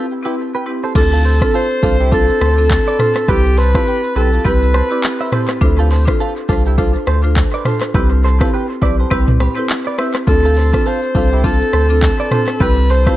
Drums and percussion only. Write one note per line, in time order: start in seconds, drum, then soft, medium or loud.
0.95 kick loud
0.95 crash loud
0.95 shaker medium
1.12 shaker soft
1.24 open hi-hat medium
1.41 kick medium
1.41 cross-stick medium
1.41 shaker soft
1.54 shaker medium
1.71 shaker medium
1.83 kick loud
1.83 shaker medium
2.00 shaker medium
2.12 kick medium
2.12 shaker medium
2.29 shaker medium
2.41 cross-stick loud
2.41 shaker medium
2.58 shaker medium
2.70 kick loud
2.70 clap loud
2.70 shaker medium
2.87 shaker medium
2.99 cross-stick medium
2.99 mid tom medium
2.99 shaker medium
3.16 cross-stick medium
3.16 shaker medium
3.28 kick loud
3.28 shaker medium
3.45 shaker medium
3.58 open hi-hat medium
3.75 kick medium
3.75 cross-stick loud
3.75 shaker soft
3.87 shaker medium
4.04 shaker medium
4.16 shaker medium
4.33 shaker medium
4.45 kick loud
4.45 shaker medium
4.62 shaker medium
4.74 cross-stick medium
4.74 shaker medium
4.91 shaker medium
5.03 clap loud
5.03 shaker medium
5.20 shaker medium
5.32 cross-stick medium
5.32 mid tom medium
5.32 shaker medium
5.49 cross-stick medium
5.49 shaker medium
5.61 kick loud
5.61 shaker medium
5.78 shaker soft
5.91 open hi-hat medium
6.08 kick medium
6.08 cross-stick loud
6.08 shaker soft
6.20 shaker medium
6.37 shaker medium
6.49 kick loud
6.49 shaker medium
6.66 shaker medium
6.78 kick loud
6.78 shaker medium
6.95 shaker medium
7.07 cross-stick loud
7.07 shaker medium
7.24 shaker medium
7.36 kick loud
7.36 clap loud
7.36 shaker medium
7.53 shaker medium
7.65 cross-stick medium
7.65 mid tom medium
7.65 shaker medium
7.81 cross-stick medium
7.81 shaker medium
7.94 kick loud
8.41 kick medium
8.41 cross-stick loud
8.82 kick loud
9.11 kick loud
9.11 cross-stick loud
9.28 mid tom loud
9.40 cross-stick loud
9.70 clap loud
9.99 cross-stick medium
10.15 cross-stick medium
10.27 kick loud
10.27 shaker medium
10.44 shaker soft
10.57 open hi-hat medium
10.74 kick medium
10.74 cross-stick medium
10.74 shaker soft
10.86 shaker medium
11.03 shaker medium
11.15 kick medium
11.15 shaker medium
11.32 shaker medium
11.44 kick loud
11.44 shaker medium
11.61 shaker medium
11.73 cross-stick medium
11.73 shaker medium
11.90 shaker medium
12.02 kick loud
12.02 clap loud
12.02 shaker medium
12.19 shaker medium
12.31 cross-stick loud
12.31 mid tom medium
12.31 shaker medium
12.48 cross-stick medium
12.48 shaker medium
12.60 kick loud
12.60 shaker medium
12.77 shaker soft
12.89 open hi-hat medium
13.06 kick medium
13.06 cross-stick medium
13.06 shaker soft